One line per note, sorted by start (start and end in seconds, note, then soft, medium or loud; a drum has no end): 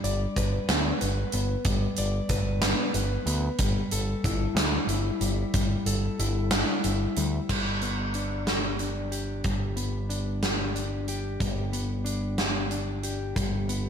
0.00 0.25 G1 medium
0.00 1.34 G3 medium
0.00 2.58 D4 medium
0.00 0.36 G4 medium
0.00 1.66 D5 medium
0.04 closed hi-hat medium
0.36 0.58 G1 medium
0.36 1.00 B4 medium
0.36 kick medium
0.36 closed hi-hat medium
0.69 0.91 D2 medium
0.69 1.32 B3 medium
0.69 snare loud
0.69 closed hi-hat medium
1.01 1.23 G1 medium
1.01 2.29 B4 medium
1.01 closed hi-hat medium
1.32 1.55 G1 medium
1.32 2.61 B3 medium
1.32 closed hi-hat medium
1.65 1.87 G1 medium
1.65 3.28 G3 medium
1.65 kick medium
1.65 closed hi-hat medium
1.97 2.20 G1 medium
1.97 3.60 D5 medium
1.97 closed hi-hat medium
2.29 2.72 G1 medium
2.29 2.94 B4 medium
2.29 kick medium
2.29 closed hi-hat medium
2.62 3.26 B3 medium
2.62 snare loud
2.62 closed hi-hat medium
2.94 3.16 G1 medium
2.94 3.60 B4 medium
2.94 closed hi-hat medium
3.26 3.48 D2 medium
3.26 3.60 B3 medium
3.26 closed hi-hat medium
3.59 3.81 G1 medium
3.59 4.55 G3 medium
3.59 kick loud
3.59 closed hi-hat medium
3.91 4.14 G1 medium
3.91 5.54 A4 medium
3.91 closed hi-hat medium
4.24 4.46 G1 medium
4.24 4.88 E4 medium
4.24 kick medium
4.24 closed hi-hat medium
4.55 4.77 D2 medium
4.55 5.20 G3 medium
4.55 snare loud
4.55 closed hi-hat medium
4.87 5.09 G1 medium
4.87 6.18 E4 medium
4.87 closed hi-hat medium
5.21 5.43 G1 medium
5.21 5.53 G3 medium
5.21 closed hi-hat medium
5.54 5.75 G1 medium
5.54 6.51 G3 medium
5.54 kick loud
5.54 closed hi-hat medium
5.86 6.08 G1 medium
5.86 7.49 A4 medium
5.86 closed hi-hat medium
6.19 6.62 G1 medium
6.19 6.83 E4 medium
6.19 closed hi-hat medium
6.51 7.16 G3 medium
6.51 snare loud
6.51 closed hi-hat loud
6.84 7.06 G1 medium
6.84 7.50 E4 medium
6.84 closed hi-hat medium
7.17 7.39 D2 medium
7.17 7.49 G3 medium
7.17 closed hi-hat medium
7.49 9.41 G1 soft
7.49 9.44 G3 soft
7.49 kick medium
7.49 crash medium
7.82 9.76 B3 soft
7.82 closed hi-hat soft
8.14 8.79 D4 soft
8.14 closed hi-hat soft
8.47 9.11 G4 medium
8.47 snare medium
8.47 closed hi-hat medium
8.79 10.09 D4 soft
8.79 closed hi-hat soft
9.12 10.42 G4 medium
9.12 closed hi-hat soft
9.44 11.36 G1 medium
9.44 11.40 G3 soft
9.44 kick medium
9.44 closed hi-hat soft
9.76 11.72 B3 soft
9.76 closed hi-hat soft
10.10 10.75 D4 soft
10.10 closed hi-hat soft
10.43 11.08 G4 medium
10.43 snare medium
10.43 closed hi-hat medium
10.75 12.04 D4 soft
10.75 closed hi-hat soft
11.08 12.38 G4 medium
11.08 closed hi-hat soft
11.40 13.32 G1 medium
11.40 13.36 G3 medium
11.40 kick medium
11.40 closed hi-hat medium
11.73 13.69 B3 medium
11.73 closed hi-hat soft
12.05 12.70 D4 medium
12.05 closed hi-hat soft
12.38 13.04 G4 medium
12.38 snare medium
12.38 closed hi-hat medium
12.71 13.89 D4 soft
12.71 closed hi-hat soft
13.03 13.89 G4 medium
13.03 closed hi-hat soft
13.36 13.89 G1 medium
13.36 13.89 G3 medium
13.36 kick medium
13.36 closed hi-hat medium
13.69 13.89 B3 soft
13.69 closed hi-hat soft